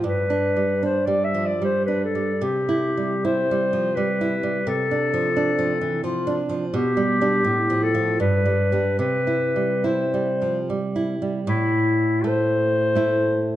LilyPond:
<<
  \new Staff \with { instrumentName = "Clarinet" } { \time 3/4 \key c \major \tempo 4 = 79 b'4 c''16 d''16 e''16 d''16 c''16 b'16 a'8 | g'4 c''4 b'4 | a'2 f'8 r8 | g'4. a'8 b'4 |
b'4 c''4 r4 | \key a \minor e'4 c''2 | }
  \new Staff \with { instrumentName = "Nylon-string guitar" } { \clef bass \time 3/4 \key c \major \tuplet 3/2 { g,8 d'8 g8 d'8 g8 f8 g8 d'8 g8 } | \tuplet 3/2 { c8 e'8 g8 e'8 g8 f8 g8 e'8 g8 } | \tuplet 3/2 { c8 d'8 f8 d'8 f8 e8 f8 d'8 f8 } | \tuplet 3/2 { b,8 g8 <g d'>8 a,8 f8 <f f'>8 g,8 g8 <g d'>8 } |
\tuplet 3/2 { c8 e'8 g8 e'8 g8 f8 g8 e'8 g8 } | \key a \minor a,4 a4 <a e'>4 | }
>>